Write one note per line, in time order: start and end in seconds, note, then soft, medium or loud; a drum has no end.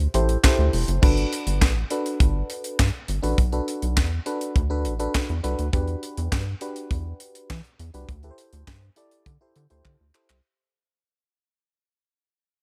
0.00 closed hi-hat soft
0.14 0.37 A1 loud
0.14 0.37 E4 medium
0.14 0.37 G4 medium
0.14 0.38 A4 medium
0.14 0.38 C5 loud
0.14 closed hi-hat medium
0.29 closed hi-hat medium
0.43 1.02 E4 medium
0.43 1.03 G4 medium
0.43 1.01 A4 medium
0.43 1.03 C5 loud
0.43 kick loud
0.43 snare loud
0.43 clap medium
0.59 0.70 D2 medium
0.73 0.85 E1 medium
0.73 open hi-hat medium
0.88 0.99 F#1 loud
0.88 closed hi-hat medium
1.02 1.25 G1 loud
1.02 1.72 D4 medium
1.02 1.72 F#4 medium
1.02 1.72 A4 medium
1.02 1.72 B4 loud
1.02 kick loud
1.02 crash medium
1.17 closed hi-hat soft
1.33 closed hi-hat medium
1.47 1.63 G1 medium
1.47 closed hi-hat medium
1.62 1.84 A1 loud
1.62 kick loud
1.62 snare loud
1.62 clap medium
1.90 2.83 D4 medium
1.90 2.83 F#4 medium
1.90 2.83 A4 medium
1.90 2.84 B4 loud
1.90 closed hi-hat medium
2.06 closed hi-hat medium
2.20 2.43 G1 loud
2.20 kick loud
2.20 closed hi-hat medium
2.50 closed hi-hat medium
2.64 closed hi-hat medium
2.79 2.91 G2 loud
2.79 kick loud
2.79 snare loud
2.79 clap loud
3.08 3.20 G1 loud
3.08 closed hi-hat medium
3.23 3.35 A1 loud
3.23 3.38 D4 loud
3.23 3.38 F#4 medium
3.23 3.38 A4 medium
3.23 3.38 B4 loud
3.23 closed hi-hat medium
3.38 3.61 B1 loud
3.38 kick loud
3.38 closed hi-hat medium
3.52 4.10 D4 medium
3.52 4.10 F#4 medium
3.52 4.10 A4 medium
3.52 4.11 B4 medium
3.52 closed hi-hat soft
3.68 closed hi-hat medium
3.82 3.99 B1 medium
3.82 closed hi-hat medium
3.97 4.20 E2 loud
3.97 kick loud
3.97 snare loud
3.97 clap medium
4.26 4.61 D4 loud
4.26 4.61 F#4 medium
4.26 4.61 A4 medium
4.26 4.61 B4 loud
4.26 closed hi-hat medium
4.41 closed hi-hat medium
4.56 4.87 D2 loud
4.56 kick loud
4.56 closed hi-hat medium
4.70 4.93 D4 loud
4.70 4.93 F#4 medium
4.70 4.94 A4 medium
4.70 4.94 B4 loud
4.85 5.08 A1 medium
4.85 closed hi-hat medium
4.99 5.34 D4 loud
4.99 5.34 F#4 medium
4.99 5.34 A4 medium
4.99 5.34 B4 loud
4.99 closed hi-hat medium
5.15 kick loud
5.15 snare loud
5.15 clap medium
5.29 5.41 E2 medium
5.29 closed hi-hat soft
5.43 5.55 C2 medium
5.43 5.67 D4 medium
5.43 5.67 F#4 medium
5.43 5.67 A4 medium
5.43 5.67 B4 loud
5.43 closed hi-hat medium
5.59 5.70 D2 loud
5.59 closed hi-hat medium
5.73 5.96 E2 loud
5.73 6.42 D4 medium
5.73 6.42 F#4 medium
5.73 6.43 G4 medium
5.73 6.43 B4 loud
5.73 kick loud
5.73 closed hi-hat medium
5.88 closed hi-hat soft
6.03 closed hi-hat medium
6.17 6.29 E2 loud
6.17 closed hi-hat medium
6.32 6.55 G2 medium
6.32 kick loud
6.32 snare loud
6.32 clap medium
6.61 7.54 D4 medium
6.61 7.54 F#4 medium
6.61 7.54 G4 medium
6.61 7.54 B4 medium
6.61 closed hi-hat medium
6.76 closed hi-hat medium
6.91 7.13 E2 medium
6.91 kick loud
6.91 closed hi-hat medium
7.20 closed hi-hat medium
7.35 closed hi-hat medium
7.50 7.61 E3 loud
7.50 kick loud
7.50 snare loud
7.50 clap medium
7.64 closed hi-hat soft
7.79 7.91 E2 loud
7.79 closed hi-hat medium
7.94 8.05 C2 medium
7.94 8.09 D4 medium
7.94 8.09 F#4 medium
7.94 8.09 G4 medium
7.94 8.09 B4 loud
7.94 closed hi-hat medium
8.09 8.31 D2 loud
8.09 kick loud
8.09 closed hi-hat medium
8.23 8.81 E4 medium
8.23 8.81 G4 medium
8.23 8.82 A4 medium
8.23 8.30 B4 medium
8.23 closed hi-hat soft
8.31 8.85 C5 loud
8.38 closed hi-hat medium
8.53 8.64 D2 loud
8.53 closed hi-hat medium
8.67 8.90 G2 medium
8.67 kick loud
8.67 snare loud
8.67 clap medium
8.96 9.31 E4 loud
8.96 9.32 G4 medium
8.96 9.32 A4 medium
8.96 9.32 D5 loud
8.96 closed hi-hat medium
9.11 closed hi-hat medium
9.26 9.37 D3 medium
9.26 kick loud
9.26 closed hi-hat medium
9.41 9.64 E4 loud
9.41 9.64 G4 medium
9.41 9.64 A4 medium
9.41 9.64 C5 loud
9.56 9.67 D3 loud
9.56 closed hi-hat medium
9.70 9.82 D2 loud
9.70 10.05 E4 medium
9.70 10.05 G4 medium
9.70 10.05 A4 medium
9.70 10.05 C5 loud
9.70 closed hi-hat medium
9.85 9.96 D3 medium
9.85 kick loud
9.85 clap medium
10.01 10.12 D2 medium
10.14 10.37 E4 medium
10.14 10.38 G4 medium
10.14 10.38 A4 medium
10.14 10.38 C5 loud
10.14 clap medium
10.30 10.41 C2 medium
10.30 clap loud